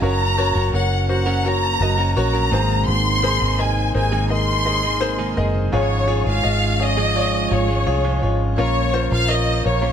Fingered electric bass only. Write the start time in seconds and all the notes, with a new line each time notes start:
0.02 F#1
0.55 F#1
0.73 F#1
1.81 F#1
2.16 A#1
2.52 G#1
2.88 G#1
3.42 G#1
3.95 G#1
5.38 F#1
5.73 G#1
6.27 G#1
6.45 G#1
7.51 G#1
7.87 C2
8.22 G#1
8.58 A#1
9.12 A#1
9.66 A#1